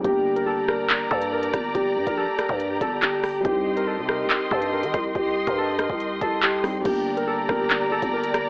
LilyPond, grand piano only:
\new Staff \with { instrumentName = "Grand piano" } { \time 4/4 \key g \minor \tempo 4 = 141 <g bes d' g'>1~ | <g bes d' g'>1 | <g c' ees' g'>1~ | <g c' ees' g'>2.~ <g c' ees' g'>8 <g c' ees' g'>8 |
<g bes d' g'>1 | }